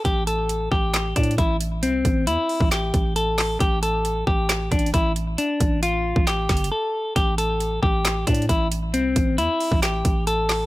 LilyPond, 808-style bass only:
\new Staff \with { instrumentName = "808-style bass" } { \clef bass \time 4/4 \key a \minor \tempo 4 = 135 a,,4. a,,4 a,8 a,,4 | c,8 a,,8 e,16 r8 a,,8. a,,4. | a,,4. a,,4 a,,8 a,,4 | r8 a,,4~ a,,16 a,,8. g,,8 r4 |
a,,4. a,,4 a,8 a,,4 | c,8 a,,8 e,16 r8 a,,8. a,,4. | }